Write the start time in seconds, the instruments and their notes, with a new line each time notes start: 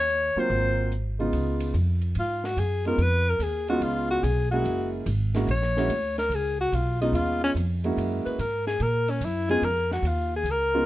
Already playing: upright bass D#2, alto saxophone C#5
0.10 closed hi-hat
0.36 grand piano F#3 A#3 C4 F4, alto saxophone C5, muted upright bass stroke
0.50 upright bass G#1, open hi-hat
0.92 closed hi-hat
1.19 grand piano C#3 G#3 B3 D#4 F4, open hi-hat
1.33 upright bass C#2, ride
1.60 ride
1.74 upright bass F2, hi-hat pedal
2.01 ride
2.15 upright bass G#2, ride
2.19 alto saxophone F4
2.44 alto saxophone F#4, snare
2.57 upright bass F#2, alto saxophone G#4, hi-hat pedal, ride
2.85 grand piano G#3 B3 C#4 D#4 F4, alto saxophone A#4, ride
2.98 upright bass F2, alto saxophone B4, ride
3.29 alto saxophone A#4
3.39 upright bass D#2, alto saxophone G#4, hi-hat pedal, ride
3.68 grand piano G#3 B3 C#4 D#4 F4, alto saxophone F#4, ride
3.80 upright bass C#2, alto saxophone F4, ride
4.11 alto saxophone F#4
4.23 upright bass B1, alto saxophone G#4, hi-hat pedal, ride
4.51 grand piano G#3 A#3 C#4 E4 G#4, alto saxophone F#4, ride
4.65 upright bass F#1, ride
5.06 upright bass G#1, hi-hat pedal, ride
5.34 grand piano G#3 A#3 C#4 E4 F#4, snare, ride
5.47 upright bass A#1, ride
5.51 alto saxophone C#5
5.62 snare
5.77 grand piano G#3 A#3 C#4 E4 F#4, snare
5.89 upright bass D2, hi-hat pedal, ride
6.18 alto saxophone A#4, snare, ride
6.29 upright bass C#2, ride
6.34 alto saxophone G#4
6.60 alto saxophone F#4
6.72 upright bass B1, alto saxophone F4, hi-hat pedal, ride
7.01 grand piano G#3 B3 C#4 D#4 F4, alto saxophone D#4, ride
7.13 upright bass D#2, alto saxophone F4, ride
7.44 alto saxophone C#4
7.55 upright bass F2, hi-hat pedal, ride
7.84 grand piano G#3 A#3 C#4 E4 F#4, ride
7.97 upright bass F#2, ride
8.25 alto saxophone B4, muted upright bass stroke, ride
8.39 upright bass G#2, alto saxophone A#4, hi-hat pedal, ride
8.67 alto saxophone G#4, snare
8.80 upright bass A#2, alto saxophone A#4, ride
9.08 alto saxophone C#4, ride
9.21 upright bass F#2, alto saxophone E4, hi-hat pedal, ride
9.49 grand piano G#3 B3 C#4 D#4 F4, alto saxophone G#4, ride
9.62 upright bass F2, alto saxophone A#4, ride
9.91 alto saxophone F#4, snare
10.03 upright bass D#2, hi-hat pedal, ride
10.07 alto saxophone F4
10.36 alto saxophone G#4
10.44 upright bass C#2, ride
10.51 alto saxophone A#4
10.74 grand piano G#3 B3 C#4 D#4 F4